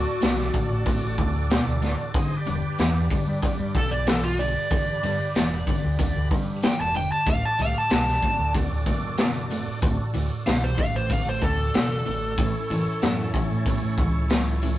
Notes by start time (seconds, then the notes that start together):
Already playing: D2 A2 D4 F#4 A4 D5
0.21 C2 D2 B2, snare, open hi-hat
0.39 snare
0.54 D2 A2, kick, open hi-hat
0.71 A1
0.86 D2 A2, kick, open hi-hat
1.03 A1
1.18 D2 A2, kick, open hi-hat
1.50 D2 B2, snare, open hi-hat
1.66 D2
1.82 D2 A2, snare, open hi-hat
2.14 G1 G2 D3 D#4 G#4 C5 D#5, kick, open hi-hat
2.36 D4 G4 B4 D5
2.47 E1 G2 D3, open hi-hat
2.79 E2 G2 E3, snare, open hi-hat
3.10 G2 D3, kick, open hi-hat
3.27 G2
3.42 G2 D3, kick, open hi-hat
3.60 G2
3.75 B1 G2 D3 A4, kick, open hi-hat
3.91 D5
4.07 G2 E3 A4, snare, open hi-hat
4.24 F4
4.39 G2 D3 D5, open hi-hat
4.70 G1 G2 D3 D4 G4 B4, kick, open hi-hat
5.03 G2 D3, open hi-hat
5.35 E1 G2 E3, snare, open hi-hat
5.67 G2 D3, kick, open hi-hat
5.84 D2
5.99 G2 D3, kick, open hi-hat
6.16 D2
6.31 G2 D3, kick, open hi-hat
6.63 G2 E3 G5, snare, open hi-hat
6.80 E1 A5
6.95 G2 D3 G5, open hi-hat
7.12 A5
7.26 D1 D2 A2 D4 F#4 A4 D5 F5, kick, open hi-hat
7.45 A5
7.59 C2 D2 A2 F5, open hi-hat
7.78 A5
7.90 C2 D2 B2 A5, snare, open hi-hat
8.08 snare
8.22 D2 A2, kick, open hi-hat
8.39 D2
8.55 D2 A2, kick, open hi-hat
8.71 D2
8.86 F#1 D2 A2, kick, open hi-hat
9.17 D2 B2, snare, open hi-hat
9.50 D2 A2, open hi-hat
9.81 D1 D2 A2 D4 F#4 A4, kick, open hi-hat
10.14 D2 A2, open hi-hat
10.46 C2 D2 B2 F5, snare, open hi-hat
10.64 C5
10.78 D2 A2 F5, kick, open hi-hat
10.95 A1 C5
11.10 D2 A2 F5, kick, open hi-hat
11.27 A1 C5
11.41 D2 A2 A4, kick, open hi-hat
11.74 F#1 D2 B2, snare, open hi-hat
12.06 A1 D2 A2, open hi-hat
12.36 A1 A2 E3 C#4 E4 A4 C#5, kick, open hi-hat
12.70 F#1 A2 E3, open hi-hat
13.02 F#2 A2 F#3, snare, open hi-hat
13.34 A2 E3, kick, open hi-hat
13.51 A2
13.66 A2 E3, kick, open hi-hat
13.82 A2
13.98 C#2 A2 E3, kick, open hi-hat
14.30 A2 F#3, snare, open hi-hat
14.62 A2 E3, open hi-hat